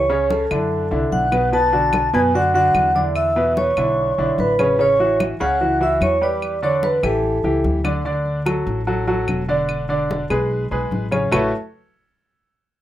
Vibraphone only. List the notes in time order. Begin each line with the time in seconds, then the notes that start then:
Already playing: C#5
0.31 A4
1.12 F#5
1.53 A5
2.15 G#5
2.35 F#5
2.55 F#5
2.96 D5
3.16 E5
3.58 C#5
4.40 B4
4.81 C#5
5.41 F#5
5.83 E5
6.02 C#5
6.23 D5
6.64 C#5
6.84 B4
7.05 A4